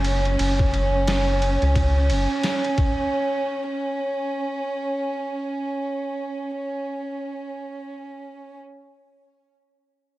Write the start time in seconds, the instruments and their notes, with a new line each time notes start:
Already playing: analog synth bass F#1, violin section C#4, downlifter
0.04 ride
0.25 ride
0.39 analog synth bass F#1, ride
0.59 kick
0.74 ride
1.08 snare, ride
1.42 ride
1.62 analog synth bass C#2, ride
1.76 kick, ride
2.10 analog synth bass F#1, ride
2.43 snare, ride
2.64 ride
2.78 kick, ride